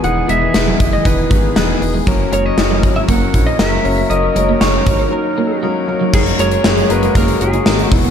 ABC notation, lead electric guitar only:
X:1
M:4/4
L:1/16
Q:1/4=118
K:F#mix
V:1 name="Lead electric guitar"
f2 e4- e d B4 B3 z | z2 c d4 e f3 d e4 | d4 c4 A4 z4 | G2 c4 B2 A2 G4 z2 |]